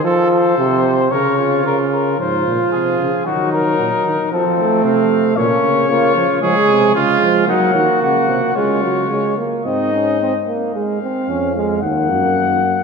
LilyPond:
<<
  \new Staff \with { instrumentName = "Trumpet" } { \time 4/4 \key bes \minor \tempo 4 = 112 c''2 des''4 bes'8 bes'8 | c''4 aes'4 ges'8 bes'4. | a'4 f''4 des''2 | \key des \major des''4 f''4 ges''4 ges''4 |
des''4. r8 ees''4. r8 | f''2 ges''2 | }
  \new Staff \with { instrumentName = "Trumpet" } { \time 4/4 \key bes \minor a'8 a'4 r8 bes'8 f'4. | f'2 ees'2 | c'2 des'4 f'4 | \key des \major aes'4 f'4 ees'8 ges'4. |
f'4. r8 ees'4. r8 | r1 | }
  \new Staff \with { instrumentName = "Trombone" } { \clef bass \time 4/4 \key bes \minor f4 c4 des4 des4 | f2 ges2 | f8 a4. bes4 bes8 f8 | \key des \major aes4 aes4 bes2 |
aes8 ges8 aes8 bes8 c'8 des'8 c'8 bes8 | aes8 c'8 des'8 aes8 bes2 | }
  \new Staff \with { instrumentName = "Bass trombone" } { \clef bass \time 4/4 \key bes \minor r1 | aes,8 bes,8 c8 des8 ees4 bes,8 ees8 | f4 c4 bes,8 des4. | \key des \major f8 c8 des8 f8 ges8 ees8 des8 c8 |
des4. r8 aes,4. r8 | r4 f,4 ees,8 ges,4. | }
>>